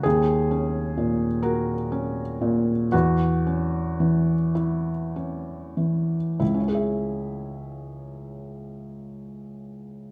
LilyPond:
<<
  \new Staff \with { instrumentName = "Felt piano" } { \time 6/8 \key cis \dorian \tempo 4. = 35 gis'4. ais'4. | fis'4. e'4. | <cis, cis cis' e' gis' e''>2. | }
  \new Staff \with { instrumentName = "Felt piano" } { \clef bass \time 6/8 \key cis \dorian dis,8 cis'8 ais,8 fis'8 cis'8 ais,8 | e,8 cis'8 e4 cis'8 e8 | r2. | }
>>